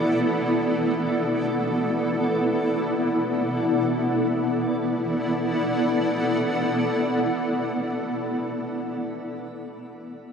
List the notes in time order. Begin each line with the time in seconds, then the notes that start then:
Already playing: B3 E4 A4 D5 F#5 D6
3.89 B3
4.04 E4
4.18 A4
4.30 D5
4.45 F#5